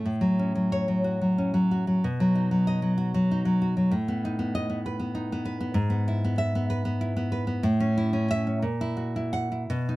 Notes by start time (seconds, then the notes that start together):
0.05 A2
0.21 F#3
0.39 C#4
0.55 F#3
0.72 C#5
0.88 F#3
1.04 F#4
1.22 F#3
1.38 C#4
1.54 F#3
1.71 F#4
1.87 F#3
2.04 B2
2.20 F#3
2.35 D#4
2.51 F#3
2.67 D#5
2.82 F#3
2.98 F#4
3.14 F#3
3.31 D#4
3.45 F#3
3.62 F#4
3.77 F#3
3.91 A2
4.08 B3
4.25 D#4
4.39 B3
4.55 D#5
4.70 B3
4.86 B4
5.00 B3
5.15 D#4
5.32 B3
5.45 B4
5.61 B3
5.74 G#2
5.90 B3
6.08 E4
6.25 B3
6.38 E5
6.55 B3
6.70 B4
6.85 B3
7.01 E4
7.17 B3
7.32 B4
7.47 B3
7.63 A2
7.80 C#4
7.98 E4
8.13 C#4
8.31 E5
8.47 C#4
8.62 A#2
8.81 E4
8.97 F#4
9.16 E4
9.33 F#5
9.52 E4
9.70 B2
9.89 D#4